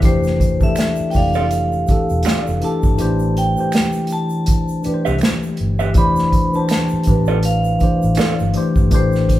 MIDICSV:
0, 0, Header, 1, 7, 480
1, 0, Start_track
1, 0, Tempo, 740741
1, 17, Time_signature, 4, 2, 24, 8
1, 6089, End_track
2, 0, Start_track
2, 0, Title_t, "Vibraphone"
2, 0, Program_c, 0, 11
2, 35, Note_on_c, 0, 72, 95
2, 378, Note_off_c, 0, 72, 0
2, 411, Note_on_c, 0, 76, 91
2, 715, Note_off_c, 0, 76, 0
2, 716, Note_on_c, 0, 79, 77
2, 746, Note_off_c, 0, 79, 0
2, 755, Note_on_c, 0, 77, 97
2, 1714, Note_on_c, 0, 81, 100
2, 1734, Note_off_c, 0, 77, 0
2, 2190, Note_on_c, 0, 79, 96
2, 2199, Note_off_c, 0, 81, 0
2, 2673, Note_on_c, 0, 81, 90
2, 2677, Note_off_c, 0, 79, 0
2, 3119, Note_off_c, 0, 81, 0
2, 3872, Note_on_c, 0, 83, 108
2, 4248, Note_on_c, 0, 81, 82
2, 4253, Note_off_c, 0, 83, 0
2, 4338, Note_off_c, 0, 81, 0
2, 4346, Note_on_c, 0, 81, 93
2, 4829, Note_on_c, 0, 77, 83
2, 4835, Note_off_c, 0, 81, 0
2, 5517, Note_off_c, 0, 77, 0
2, 5804, Note_on_c, 0, 72, 83
2, 6089, Note_off_c, 0, 72, 0
2, 6089, End_track
3, 0, Start_track
3, 0, Title_t, "Clean electric guitar"
3, 0, Program_c, 1, 27
3, 877, Note_on_c, 1, 74, 67
3, 879, Note_on_c, 1, 69, 67
3, 882, Note_on_c, 1, 65, 56
3, 885, Note_on_c, 1, 60, 52
3, 934, Note_off_c, 1, 74, 0
3, 935, Note_off_c, 1, 69, 0
3, 937, Note_off_c, 1, 65, 0
3, 938, Note_off_c, 1, 60, 0
3, 1461, Note_on_c, 1, 60, 87
3, 1463, Note_on_c, 1, 65, 93
3, 1466, Note_on_c, 1, 69, 89
3, 1468, Note_on_c, 1, 74, 102
3, 1560, Note_off_c, 1, 60, 0
3, 1561, Note_off_c, 1, 65, 0
3, 1562, Note_off_c, 1, 69, 0
3, 1563, Note_off_c, 1, 74, 0
3, 3273, Note_on_c, 1, 76, 60
3, 3277, Note_on_c, 1, 71, 64
3, 3279, Note_on_c, 1, 67, 56
3, 3281, Note_on_c, 1, 60, 48
3, 3332, Note_off_c, 1, 76, 0
3, 3334, Note_off_c, 1, 71, 0
3, 3335, Note_off_c, 1, 67, 0
3, 3336, Note_off_c, 1, 60, 0
3, 3753, Note_on_c, 1, 76, 65
3, 3757, Note_on_c, 1, 71, 54
3, 3760, Note_on_c, 1, 67, 56
3, 3762, Note_on_c, 1, 60, 52
3, 3812, Note_off_c, 1, 76, 0
3, 3814, Note_off_c, 1, 71, 0
3, 3816, Note_off_c, 1, 67, 0
3, 3817, Note_off_c, 1, 60, 0
3, 4717, Note_on_c, 1, 74, 65
3, 4720, Note_on_c, 1, 69, 66
3, 4722, Note_on_c, 1, 65, 58
3, 4725, Note_on_c, 1, 60, 50
3, 4774, Note_off_c, 1, 74, 0
3, 4776, Note_off_c, 1, 69, 0
3, 4777, Note_off_c, 1, 65, 0
3, 4778, Note_off_c, 1, 60, 0
3, 5297, Note_on_c, 1, 60, 89
3, 5301, Note_on_c, 1, 65, 84
3, 5303, Note_on_c, 1, 69, 105
3, 5304, Note_on_c, 1, 74, 97
3, 5398, Note_off_c, 1, 60, 0
3, 5400, Note_off_c, 1, 65, 0
3, 5401, Note_off_c, 1, 69, 0
3, 5401, Note_off_c, 1, 74, 0
3, 6089, End_track
4, 0, Start_track
4, 0, Title_t, "Tine electric piano"
4, 0, Program_c, 2, 4
4, 0, Control_c, 2, 64, 127
4, 5, Note_on_c, 2, 52, 97
4, 13, Note_on_c, 2, 57, 88
4, 20, Note_on_c, 2, 62, 92
4, 25, Control_c, 2, 64, 0
4, 27, Note_on_c, 2, 67, 88
4, 35, Note_on_c, 2, 72, 103
4, 145, Control_c, 2, 64, 127
4, 288, Note_off_c, 2, 52, 0
4, 292, Note_off_c, 2, 57, 0
4, 296, Note_off_c, 2, 62, 0
4, 299, Note_off_c, 2, 67, 0
4, 303, Note_off_c, 2, 72, 0
4, 385, Note_on_c, 2, 52, 72
4, 392, Note_on_c, 2, 57, 67
4, 400, Note_on_c, 2, 62, 70
4, 408, Note_on_c, 2, 67, 66
4, 414, Note_on_c, 2, 69, 81
4, 657, Note_off_c, 2, 52, 0
4, 661, Note_off_c, 2, 57, 0
4, 665, Note_off_c, 2, 62, 0
4, 669, Note_off_c, 2, 67, 0
4, 672, Note_off_c, 2, 69, 0
4, 728, Note_on_c, 2, 52, 73
4, 734, Note_on_c, 2, 56, 54
4, 742, Note_on_c, 2, 62, 63
4, 750, Note_on_c, 2, 67, 64
4, 757, Note_on_c, 2, 74, 78
4, 777, Note_on_c, 2, 57, 64
4, 784, Note_off_c, 2, 56, 0
4, 1113, Note_off_c, 2, 52, 0
4, 1120, Note_off_c, 2, 62, 0
4, 1124, Note_off_c, 2, 67, 0
4, 1128, Note_off_c, 2, 74, 0
4, 1138, Note_off_c, 2, 57, 0
4, 1207, Note_on_c, 2, 52, 73
4, 1215, Note_on_c, 2, 57, 63
4, 1223, Note_on_c, 2, 62, 66
4, 1229, Note_on_c, 2, 67, 58
4, 1238, Note_on_c, 2, 69, 81
4, 1593, Note_off_c, 2, 52, 0
4, 1597, Note_off_c, 2, 57, 0
4, 1600, Note_off_c, 2, 62, 0
4, 1604, Note_off_c, 2, 67, 0
4, 1608, Note_off_c, 2, 69, 0
4, 1685, Note_on_c, 2, 52, 75
4, 1693, Note_on_c, 2, 57, 68
4, 1700, Note_on_c, 2, 62, 68
4, 1707, Note_on_c, 2, 67, 68
4, 1716, Note_on_c, 2, 69, 86
4, 1881, Note_off_c, 2, 52, 0
4, 1885, Note_off_c, 2, 57, 0
4, 1889, Note_off_c, 2, 62, 0
4, 1892, Note_off_c, 2, 67, 0
4, 1896, Note_off_c, 2, 69, 0
4, 1925, Note_on_c, 2, 52, 97
4, 1932, Note_on_c, 2, 57, 83
4, 1940, Note_on_c, 2, 62, 86
4, 1946, Control_c, 2, 64, 0
4, 1946, Note_on_c, 2, 67, 88
4, 1954, Note_on_c, 2, 72, 99
4, 2053, Control_c, 2, 64, 127
4, 2208, Note_off_c, 2, 52, 0
4, 2212, Note_off_c, 2, 57, 0
4, 2216, Note_off_c, 2, 62, 0
4, 2219, Note_off_c, 2, 67, 0
4, 2223, Note_off_c, 2, 72, 0
4, 2307, Note_on_c, 2, 52, 74
4, 2313, Note_on_c, 2, 57, 64
4, 2321, Note_on_c, 2, 62, 65
4, 2328, Note_on_c, 2, 67, 66
4, 2336, Note_on_c, 2, 72, 80
4, 2934, Note_off_c, 2, 52, 0
4, 2937, Note_off_c, 2, 57, 0
4, 2941, Note_off_c, 2, 62, 0
4, 2945, Note_off_c, 2, 67, 0
4, 2949, Note_off_c, 2, 72, 0
4, 3129, Note_on_c, 2, 52, 82
4, 3136, Note_on_c, 2, 57, 74
4, 3143, Note_on_c, 2, 62, 74
4, 3150, Note_on_c, 2, 67, 69
4, 3158, Note_on_c, 2, 71, 65
4, 3195, Note_off_c, 2, 71, 0
4, 3200, Note_on_c, 2, 72, 79
4, 3687, Note_off_c, 2, 52, 0
4, 3691, Note_off_c, 2, 57, 0
4, 3694, Note_off_c, 2, 62, 0
4, 3698, Note_off_c, 2, 67, 0
4, 3723, Note_off_c, 2, 72, 0
4, 3848, Note_on_c, 2, 52, 96
4, 3856, Note_on_c, 2, 57, 89
4, 3864, Control_c, 2, 64, 0
4, 3864, Note_on_c, 2, 62, 86
4, 3871, Note_on_c, 2, 67, 89
4, 3878, Note_on_c, 2, 72, 112
4, 3979, Control_c, 2, 64, 127
4, 4130, Note_off_c, 2, 52, 0
4, 4134, Note_off_c, 2, 57, 0
4, 4138, Note_off_c, 2, 62, 0
4, 4141, Note_off_c, 2, 67, 0
4, 4145, Note_off_c, 2, 72, 0
4, 4225, Note_on_c, 2, 52, 71
4, 4233, Note_on_c, 2, 57, 61
4, 4239, Note_on_c, 2, 62, 70
4, 4247, Note_on_c, 2, 67, 62
4, 4255, Note_on_c, 2, 72, 79
4, 4497, Note_off_c, 2, 52, 0
4, 4502, Note_off_c, 2, 57, 0
4, 4505, Note_off_c, 2, 62, 0
4, 4508, Note_off_c, 2, 67, 0
4, 4512, Note_off_c, 2, 72, 0
4, 4568, Note_on_c, 2, 52, 71
4, 4574, Note_on_c, 2, 57, 62
4, 4582, Note_on_c, 2, 62, 64
4, 4590, Note_on_c, 2, 67, 63
4, 4597, Note_on_c, 2, 71, 81
4, 4953, Note_off_c, 2, 52, 0
4, 4956, Note_off_c, 2, 57, 0
4, 4960, Note_off_c, 2, 62, 0
4, 4964, Note_off_c, 2, 67, 0
4, 4968, Note_off_c, 2, 71, 0
4, 5048, Note_on_c, 2, 52, 70
4, 5056, Note_on_c, 2, 57, 66
4, 5062, Note_on_c, 2, 62, 62
4, 5070, Note_on_c, 2, 67, 65
4, 5077, Note_on_c, 2, 72, 74
4, 5433, Note_off_c, 2, 52, 0
4, 5437, Note_off_c, 2, 57, 0
4, 5440, Note_off_c, 2, 62, 0
4, 5444, Note_off_c, 2, 67, 0
4, 5448, Note_off_c, 2, 72, 0
4, 5527, Note_on_c, 2, 52, 85
4, 5535, Note_on_c, 2, 57, 80
4, 5541, Note_on_c, 2, 62, 79
4, 5549, Note_on_c, 2, 67, 78
4, 5555, Note_on_c, 2, 72, 101
4, 5722, Note_off_c, 2, 52, 0
4, 5726, Note_off_c, 2, 57, 0
4, 5729, Note_off_c, 2, 62, 0
4, 5733, Note_off_c, 2, 67, 0
4, 5736, Note_off_c, 2, 72, 0
4, 5765, Note_on_c, 2, 52, 99
4, 5773, Note_on_c, 2, 57, 87
4, 5780, Note_on_c, 2, 62, 90
4, 5785, Control_c, 2, 64, 0
4, 5787, Note_on_c, 2, 67, 85
4, 5795, Note_on_c, 2, 72, 104
4, 5890, Control_c, 2, 64, 127
4, 6048, Note_off_c, 2, 52, 0
4, 6052, Note_off_c, 2, 57, 0
4, 6056, Note_off_c, 2, 62, 0
4, 6059, Note_off_c, 2, 67, 0
4, 6063, Note_off_c, 2, 72, 0
4, 6089, End_track
5, 0, Start_track
5, 0, Title_t, "Fingered electric bass"
5, 0, Program_c, 3, 33
5, 25, Note_on_c, 3, 29, 94
5, 475, Note_off_c, 3, 29, 0
5, 752, Note_on_c, 3, 29, 92
5, 1198, Note_off_c, 3, 29, 0
5, 1367, Note_on_c, 3, 28, 88
5, 1455, Note_off_c, 3, 28, 0
5, 1610, Note_on_c, 3, 29, 90
5, 1696, Note_off_c, 3, 29, 0
5, 1845, Note_on_c, 3, 31, 78
5, 1934, Note_off_c, 3, 31, 0
5, 1954, Note_on_c, 3, 33, 96
5, 2297, Note_off_c, 3, 33, 0
5, 3290, Note_on_c, 3, 36, 83
5, 3376, Note_off_c, 3, 36, 0
5, 3632, Note_on_c, 3, 31, 75
5, 3863, Note_off_c, 3, 31, 0
5, 3863, Note_on_c, 3, 29, 106
5, 4212, Note_off_c, 3, 29, 0
5, 4591, Note_on_c, 3, 33, 86
5, 5038, Note_off_c, 3, 33, 0
5, 5209, Note_on_c, 3, 33, 95
5, 5296, Note_off_c, 3, 33, 0
5, 5449, Note_on_c, 3, 31, 82
5, 5536, Note_off_c, 3, 31, 0
5, 5683, Note_on_c, 3, 31, 92
5, 5784, Note_off_c, 3, 31, 0
5, 5784, Note_on_c, 3, 33, 95
5, 6089, Note_off_c, 3, 33, 0
5, 6089, End_track
6, 0, Start_track
6, 0, Title_t, "Muted fingered electric bass strokes"
6, 648, Note_on_c, 9, 29, 45
6, 713, Note_off_c, 9, 29, 0
6, 1230, Note_on_c, 9, 29, 47
6, 1295, Note_off_c, 9, 29, 0
6, 3153, Note_on_c, 9, 29, 49
6, 3218, Note_off_c, 9, 29, 0
6, 4493, Note_on_c, 9, 29, 49
6, 4557, Note_off_c, 9, 29, 0
6, 5312, Note_on_c, 9, 29, 47
6, 5377, Note_off_c, 9, 29, 0
6, 6089, End_track
7, 0, Start_track
7, 0, Title_t, "Drums"
7, 12, Note_on_c, 9, 42, 68
7, 16, Note_on_c, 9, 82, 61
7, 17, Note_on_c, 9, 36, 111
7, 77, Note_off_c, 9, 42, 0
7, 81, Note_off_c, 9, 82, 0
7, 82, Note_off_c, 9, 36, 0
7, 151, Note_on_c, 9, 82, 44
7, 170, Note_on_c, 9, 38, 37
7, 216, Note_off_c, 9, 82, 0
7, 235, Note_off_c, 9, 38, 0
7, 259, Note_on_c, 9, 36, 85
7, 264, Note_on_c, 9, 42, 75
7, 266, Note_on_c, 9, 82, 54
7, 324, Note_off_c, 9, 36, 0
7, 329, Note_off_c, 9, 42, 0
7, 331, Note_off_c, 9, 82, 0
7, 393, Note_on_c, 9, 36, 91
7, 393, Note_on_c, 9, 82, 49
7, 458, Note_off_c, 9, 36, 0
7, 458, Note_off_c, 9, 82, 0
7, 491, Note_on_c, 9, 26, 66
7, 491, Note_on_c, 9, 82, 68
7, 497, Note_on_c, 9, 42, 85
7, 511, Note_on_c, 9, 38, 105
7, 555, Note_off_c, 9, 26, 0
7, 555, Note_off_c, 9, 82, 0
7, 562, Note_off_c, 9, 42, 0
7, 576, Note_off_c, 9, 38, 0
7, 619, Note_on_c, 9, 82, 53
7, 684, Note_off_c, 9, 82, 0
7, 720, Note_on_c, 9, 46, 52
7, 735, Note_on_c, 9, 82, 49
7, 744, Note_on_c, 9, 36, 84
7, 785, Note_off_c, 9, 46, 0
7, 800, Note_off_c, 9, 82, 0
7, 809, Note_off_c, 9, 36, 0
7, 864, Note_on_c, 9, 82, 42
7, 928, Note_off_c, 9, 82, 0
7, 976, Note_on_c, 9, 42, 87
7, 982, Note_on_c, 9, 82, 67
7, 1041, Note_off_c, 9, 42, 0
7, 1047, Note_off_c, 9, 82, 0
7, 1116, Note_on_c, 9, 82, 39
7, 1180, Note_off_c, 9, 82, 0
7, 1212, Note_on_c, 9, 82, 49
7, 1222, Note_on_c, 9, 42, 62
7, 1223, Note_on_c, 9, 36, 91
7, 1277, Note_off_c, 9, 82, 0
7, 1287, Note_off_c, 9, 36, 0
7, 1287, Note_off_c, 9, 42, 0
7, 1357, Note_on_c, 9, 82, 40
7, 1422, Note_off_c, 9, 82, 0
7, 1442, Note_on_c, 9, 42, 68
7, 1458, Note_on_c, 9, 26, 57
7, 1458, Note_on_c, 9, 82, 63
7, 1473, Note_on_c, 9, 38, 108
7, 1507, Note_off_c, 9, 42, 0
7, 1523, Note_off_c, 9, 26, 0
7, 1523, Note_off_c, 9, 82, 0
7, 1538, Note_off_c, 9, 38, 0
7, 1599, Note_on_c, 9, 82, 55
7, 1664, Note_off_c, 9, 82, 0
7, 1695, Note_on_c, 9, 42, 64
7, 1760, Note_off_c, 9, 42, 0
7, 1831, Note_on_c, 9, 82, 49
7, 1836, Note_on_c, 9, 36, 91
7, 1896, Note_off_c, 9, 82, 0
7, 1901, Note_off_c, 9, 36, 0
7, 1934, Note_on_c, 9, 42, 68
7, 1935, Note_on_c, 9, 82, 65
7, 1999, Note_off_c, 9, 42, 0
7, 1999, Note_off_c, 9, 82, 0
7, 2068, Note_on_c, 9, 82, 47
7, 2133, Note_off_c, 9, 82, 0
7, 2182, Note_on_c, 9, 42, 71
7, 2184, Note_on_c, 9, 82, 50
7, 2247, Note_off_c, 9, 42, 0
7, 2249, Note_off_c, 9, 82, 0
7, 2312, Note_on_c, 9, 82, 52
7, 2377, Note_off_c, 9, 82, 0
7, 2411, Note_on_c, 9, 26, 65
7, 2411, Note_on_c, 9, 82, 65
7, 2416, Note_on_c, 9, 42, 84
7, 2430, Note_on_c, 9, 38, 113
7, 2476, Note_off_c, 9, 26, 0
7, 2476, Note_off_c, 9, 82, 0
7, 2481, Note_off_c, 9, 42, 0
7, 2494, Note_off_c, 9, 38, 0
7, 2542, Note_on_c, 9, 82, 49
7, 2607, Note_off_c, 9, 82, 0
7, 2638, Note_on_c, 9, 42, 69
7, 2656, Note_on_c, 9, 82, 48
7, 2703, Note_off_c, 9, 42, 0
7, 2721, Note_off_c, 9, 82, 0
7, 2783, Note_on_c, 9, 82, 41
7, 2848, Note_off_c, 9, 82, 0
7, 2891, Note_on_c, 9, 42, 83
7, 2902, Note_on_c, 9, 82, 65
7, 2903, Note_on_c, 9, 36, 90
7, 2956, Note_off_c, 9, 42, 0
7, 2967, Note_off_c, 9, 82, 0
7, 2968, Note_off_c, 9, 36, 0
7, 3036, Note_on_c, 9, 82, 40
7, 3101, Note_off_c, 9, 82, 0
7, 3132, Note_on_c, 9, 82, 48
7, 3137, Note_on_c, 9, 42, 62
7, 3197, Note_off_c, 9, 82, 0
7, 3202, Note_off_c, 9, 42, 0
7, 3278, Note_on_c, 9, 82, 47
7, 3343, Note_off_c, 9, 82, 0
7, 3360, Note_on_c, 9, 42, 69
7, 3379, Note_on_c, 9, 26, 65
7, 3379, Note_on_c, 9, 82, 58
7, 3390, Note_on_c, 9, 38, 106
7, 3424, Note_off_c, 9, 42, 0
7, 3443, Note_off_c, 9, 26, 0
7, 3443, Note_off_c, 9, 82, 0
7, 3455, Note_off_c, 9, 38, 0
7, 3518, Note_on_c, 9, 82, 52
7, 3583, Note_off_c, 9, 82, 0
7, 3609, Note_on_c, 9, 42, 58
7, 3674, Note_off_c, 9, 42, 0
7, 3754, Note_on_c, 9, 82, 49
7, 3819, Note_off_c, 9, 82, 0
7, 3849, Note_on_c, 9, 42, 68
7, 3855, Note_on_c, 9, 36, 109
7, 3856, Note_on_c, 9, 82, 63
7, 3914, Note_off_c, 9, 42, 0
7, 3920, Note_off_c, 9, 36, 0
7, 3921, Note_off_c, 9, 82, 0
7, 3991, Note_on_c, 9, 82, 47
7, 4006, Note_on_c, 9, 38, 35
7, 4056, Note_off_c, 9, 82, 0
7, 4071, Note_off_c, 9, 38, 0
7, 4098, Note_on_c, 9, 36, 87
7, 4099, Note_on_c, 9, 42, 69
7, 4106, Note_on_c, 9, 82, 51
7, 4163, Note_off_c, 9, 36, 0
7, 4164, Note_off_c, 9, 42, 0
7, 4171, Note_off_c, 9, 82, 0
7, 4234, Note_on_c, 9, 82, 51
7, 4299, Note_off_c, 9, 82, 0
7, 4333, Note_on_c, 9, 26, 60
7, 4333, Note_on_c, 9, 82, 59
7, 4336, Note_on_c, 9, 42, 79
7, 4349, Note_on_c, 9, 38, 114
7, 4398, Note_off_c, 9, 26, 0
7, 4398, Note_off_c, 9, 82, 0
7, 4401, Note_off_c, 9, 42, 0
7, 4414, Note_off_c, 9, 38, 0
7, 4461, Note_on_c, 9, 82, 47
7, 4526, Note_off_c, 9, 82, 0
7, 4558, Note_on_c, 9, 42, 72
7, 4576, Note_on_c, 9, 82, 46
7, 4583, Note_on_c, 9, 36, 93
7, 4623, Note_off_c, 9, 42, 0
7, 4641, Note_off_c, 9, 82, 0
7, 4648, Note_off_c, 9, 36, 0
7, 4703, Note_on_c, 9, 82, 42
7, 4768, Note_off_c, 9, 82, 0
7, 4812, Note_on_c, 9, 42, 88
7, 4821, Note_on_c, 9, 82, 65
7, 4877, Note_off_c, 9, 42, 0
7, 4885, Note_off_c, 9, 82, 0
7, 4952, Note_on_c, 9, 82, 41
7, 5017, Note_off_c, 9, 82, 0
7, 5053, Note_on_c, 9, 82, 48
7, 5056, Note_on_c, 9, 42, 57
7, 5061, Note_on_c, 9, 36, 87
7, 5117, Note_off_c, 9, 82, 0
7, 5121, Note_off_c, 9, 42, 0
7, 5126, Note_off_c, 9, 36, 0
7, 5198, Note_on_c, 9, 82, 46
7, 5263, Note_off_c, 9, 82, 0
7, 5279, Note_on_c, 9, 42, 73
7, 5296, Note_on_c, 9, 26, 60
7, 5296, Note_on_c, 9, 82, 56
7, 5310, Note_on_c, 9, 38, 110
7, 5344, Note_off_c, 9, 42, 0
7, 5361, Note_off_c, 9, 26, 0
7, 5361, Note_off_c, 9, 82, 0
7, 5375, Note_off_c, 9, 38, 0
7, 5438, Note_on_c, 9, 82, 50
7, 5503, Note_off_c, 9, 82, 0
7, 5531, Note_on_c, 9, 42, 64
7, 5596, Note_off_c, 9, 42, 0
7, 5675, Note_on_c, 9, 36, 93
7, 5675, Note_on_c, 9, 82, 45
7, 5739, Note_off_c, 9, 82, 0
7, 5740, Note_off_c, 9, 36, 0
7, 5773, Note_on_c, 9, 42, 72
7, 5776, Note_on_c, 9, 36, 107
7, 5776, Note_on_c, 9, 82, 64
7, 5838, Note_off_c, 9, 42, 0
7, 5841, Note_off_c, 9, 36, 0
7, 5841, Note_off_c, 9, 82, 0
7, 5911, Note_on_c, 9, 82, 44
7, 5928, Note_on_c, 9, 38, 35
7, 5975, Note_off_c, 9, 82, 0
7, 5993, Note_off_c, 9, 38, 0
7, 6019, Note_on_c, 9, 36, 83
7, 6021, Note_on_c, 9, 42, 76
7, 6026, Note_on_c, 9, 82, 53
7, 6083, Note_off_c, 9, 36, 0
7, 6086, Note_off_c, 9, 42, 0
7, 6089, Note_off_c, 9, 82, 0
7, 6089, End_track
0, 0, End_of_file